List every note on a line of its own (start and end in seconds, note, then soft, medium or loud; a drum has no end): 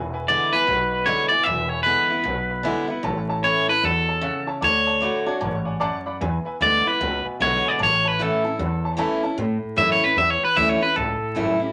0.00 0.34 E1 medium
0.00 0.65 E2 medium
0.13 0.22 B4 loud
0.13 0.22 E5 medium
0.13 0.22 G#5 loud
0.28 0.52 D3 medium
0.28 0.52 G#3 medium
0.28 0.53 B3 medium
0.28 0.51 E4 medium
0.28 0.43 B4 medium
0.28 0.54 D5 medium
0.28 0.43 E5 medium
0.52 0.68 B3 soft
0.52 0.67 E4 medium
0.52 1.08 B4 loud
0.52 0.62 B4 medium
0.52 0.62 E5 medium
0.52 0.62 G#5 medium
0.52 muted upright bass stroke medium
0.67 1.13 B1 medium
0.67 1.43 B2 medium
0.67 0.82 E5 medium
0.67 0.83 F#5 medium
0.91 1.01 B4 medium
0.91 1.01 E5 medium
0.91 1.01 B5 medium
1.06 1.30 D3 medium
1.06 1.31 G#3 loud
1.06 1.31 B3 loud
1.06 1.30 E4 loud
1.06 1.21 B4 loud
1.06 1.28 C#5 medium
1.06 1.22 E5 loud
1.06 1.22 B5 loud
1.29 1.45 E4 medium
1.29 1.40 B4 medium
1.29 1.43 D5 loud
1.29 1.41 E5 medium
1.29 1.41 G#5 medium
1.29 muted upright bass stroke medium
1.33 1.46 B3 soft
1.43 1.92 E1 loud
1.43 2.22 E2 medium
1.43 1.61 B4 medium
1.43 1.69 E5 loud
1.43 1.62 E5 medium
1.43 1.62 G#5 loud
1.69 1.80 B4 medium
1.69 1.82 C#5 loud
1.69 1.80 E5 medium
1.69 1.80 G#5 medium
1.83 2.09 D3 medium
1.83 2.10 G#3 medium
1.83 2.10 B3 medium
1.83 2.09 E4 medium
1.83 2.85 B4 medium
1.83 2.01 B4 medium
1.83 2.01 E5 medium
1.83 2.01 G#5 loud
2.10 2.25 B3 medium
2.10 2.24 E4 medium
2.10 2.19 B4 medium
2.10 2.19 E5 medium
2.10 2.20 F#5 medium
2.10 muted upright bass stroke medium
2.24 2.71 B1 medium
2.24 3.01 B2 medium
2.24 2.40 B4 medium
2.24 2.40 E5 medium
2.24 2.40 F#5 medium
2.50 2.59 B4 medium
2.50 2.59 E5 medium
2.50 2.59 B5 medium
2.63 2.88 D3 medium
2.63 2.89 G#3 medium
2.63 2.89 B3 loud
2.63 2.87 E4 loud
2.63 2.79 B4 loud
2.63 2.80 E5 loud
2.63 2.80 G#5 loud
2.88 3.04 B3 soft
2.88 3.03 E4 medium
2.88 2.98 B4 medium
2.88 2.98 E5 medium
2.88 2.98 F#5 loud
2.88 muted upright bass stroke medium
3.03 3.49 A1 medium
3.03 3.80 A2 medium
3.03 3.19 C#5 loud
3.03 3.19 E5 medium
3.03 3.19 A5 loud
3.29 3.38 C#5 medium
3.29 3.38 E5 medium
3.29 3.38 A5 loud
3.42 3.68 E3 medium
3.42 3.68 A3 medium
3.42 3.68 C#4 medium
3.42 3.67 E4 medium
3.42 3.58 C#5 medium
3.42 3.69 C#5 loud
3.42 3.58 E5 medium
3.42 3.59 B5 loud
3.68 3.83 C#4 soft
3.68 3.83 E4 medium
3.68 3.85 B4 loud
3.68 3.77 C#5 medium
3.68 3.78 E5 medium
3.68 3.78 A5 medium
3.68 muted upright bass stroke medium
3.83 4.29 E2 medium
3.83 4.21 B2 medium
3.83 4.49 A4 loud
3.83 3.98 C#5 medium
3.83 3.99 E5 medium
3.83 3.99 B5 medium
4.08 4.17 C#5 medium
4.08 4.17 E5 medium
4.08 4.17 A5 medium
4.21 4.60 C#3 medium
4.21 4.38 C#5 loud
4.21 4.38 E5 loud
4.21 4.38 F#5 loud
4.47 4.56 C#5 loud
4.47 4.56 E5 medium
4.47 4.56 A5 loud
4.47 muted upright bass stroke medium
4.61 5.07 D2 medium
4.61 4.99 D3 medium
4.61 6.03 C#5 loud
4.61 4.77 D5 loud
4.61 4.77 F#5 medium
4.61 4.77 A5 medium
4.86 4.95 D5 medium
4.86 4.96 F#5 medium
4.86 4.96 A5 medium
5.00 5.25 D3 medium
5.00 5.26 A3 medium
5.00 5.26 D4 medium
5.00 5.25 F#4 medium
5.00 5.17 D5 loud
5.00 5.17 F#5 medium
5.00 5.17 B5 loud
5.26 5.42 D4 medium
5.26 5.41 F#4 medium
5.26 5.35 D5 medium
5.26 5.35 F#5 medium
5.26 5.36 A5 medium
5.26 muted upright bass stroke medium
5.40 5.87 A1 medium
5.40 5.79 G#2 medium
5.40 5.56 D5 medium
5.40 5.56 F#5 medium
5.40 5.56 A5 medium
5.65 5.74 D5 medium
5.65 5.75 F#5 medium
5.65 5.75 G#5 medium
5.80 6.19 F#2 medium
5.80 5.96 D5 loud
5.80 5.96 F#5 loud
5.80 5.96 A5 loud
6.06 6.15 D5 loud
6.06 6.15 F#5 medium
6.06 6.15 B5 loud
6.06 muted upright bass stroke medium
6.21 6.39 E2 medium
6.21 6.97 E2 medium
6.21 6.36 B4 loud
6.21 6.36 E5 medium
6.21 6.36 G#5 loud
6.45 6.54 B4 medium
6.45 6.54 E5 medium
6.45 6.55 G#5 loud
6.45 muted upright bass stroke medium
6.60 6.82 D2 medium
6.60 6.85 D3 medium
6.60 6.85 G#3 medium
6.60 6.85 B3 medium
6.60 6.85 E4 medium
6.60 6.75 B4 medium
6.60 6.87 D5 loud
6.60 6.75 E5 medium
6.60 6.76 F#5 loud
6.86 7.01 B3 soft
6.86 7.00 E4 medium
6.86 6.94 B4 medium
6.86 7.26 B4 loud
6.86 6.94 E5 medium
6.86 6.94 B5 medium
6.99 7.22 C#2 medium
6.99 7.77 B2 medium
6.99 7.15 B4 medium
6.99 7.15 E5 medium
6.99 7.15 F#5 medium
7.24 7.33 B4 medium
7.24 7.33 E5 medium
7.24 7.34 G#5 medium
7.24 muted upright bass stroke medium
7.40 7.61 B1 medium
7.40 7.78 D3 medium
7.40 7.78 G#3 loud
7.40 7.79 B3 loud
7.40 7.79 E4 loud
7.40 7.55 B4 loud
7.40 7.68 C#5 loud
7.40 7.55 E5 loud
7.40 7.55 F#5 loud
7.65 7.73 B4 medium
7.65 7.81 D5 loud
7.65 7.74 E5 medium
7.65 7.74 G#5 medium
7.65 muted upright bass stroke medium
7.79 8.25 A1 medium
7.79 8.55 A2 medium
7.79 7.94 C#5 medium
7.79 7.94 E5 medium
7.79 7.95 A5 loud
7.83 8.08 C#5 medium
8.05 8.22 B4 loud
8.05 8.13 C#5 medium
8.05 8.13 E5 medium
8.05 8.13 A5 medium
8.19 8.43 E3 medium
8.19 8.43 A3 medium
8.19 8.44 C#4 medium
8.19 8.43 E4 loud
8.19 8.99 A4 medium
8.19 8.34 C#5 medium
8.19 8.34 E5 medium
8.19 8.35 F#5 loud
8.44 8.59 C#4 medium
8.44 8.58 E4 medium
8.44 8.53 C#5 medium
8.44 8.53 E5 medium
8.44 8.53 A5 medium
8.44 muted upright bass stroke medium
8.59 9.04 E2 loud
8.59 9.35 E2 medium
8.59 8.73 C#5 medium
8.59 8.74 E5 medium
8.59 8.74 F#5 medium
8.84 8.92 C#5 medium
8.84 8.92 E5 medium
8.84 8.93 A5 medium
8.97 9.21 E3 medium
8.97 9.22 A3 medium
8.97 9.22 C#4 loud
8.97 9.22 E4 loud
8.97 9.13 C#5 loud
8.97 9.13 E5 loud
8.97 9.13 A5 loud
9.23 9.38 C#4 soft
9.23 9.37 E4 medium
9.23 9.31 C#5 medium
9.23 9.32 E5 medium
9.23 9.32 A5 loud
9.23 muted upright bass stroke medium
9.38 10.14 A2 medium
9.38 9.62 A2 medium
9.63 muted upright bass stroke medium
9.76 10.01 F#2 loud
9.76 10.01 E3 medium
9.76 10.01 A3 medium
9.76 10.02 C#4 medium
9.76 10.02 E4 medium
9.76 9.90 E5 loud
9.92 10.04 C#5 medium
10.03 10.18 C#4 soft
10.03 10.16 E4 medium
10.03 10.16 B4 medium
10.03 muted upright bass stroke medium
10.16 10.41 E2 medium
10.16 10.93 E2 medium
10.16 10.30 E5 medium
10.30 10.43 C#5 medium
10.42 10.57 B4 medium
10.42 muted upright bass stroke medium
10.55 10.81 D2 medium
10.55 10.80 E3 medium
10.55 10.80 A3 loud
10.55 10.81 C#4 loud
10.55 10.80 E4 loud
10.55 10.69 E5 medium
10.69 10.82 C#5 medium
10.81 10.96 C#4 soft
10.81 10.95 E4 medium
10.81 10.96 B4 medium
10.96 11.21 C#2 medium
10.96 11.72 A2 medium
10.96 11.72 A4 loud
11.22 muted upright bass stroke medium
11.35 11.60 F#1 loud
11.35 11.59 E3 medium
11.35 11.60 A3 medium
11.35 11.60 C#4 medium
11.35 11.58 E4 medium
11.60 11.72 C#4 soft
11.60 11.72 E4 medium
11.60 muted upright bass stroke medium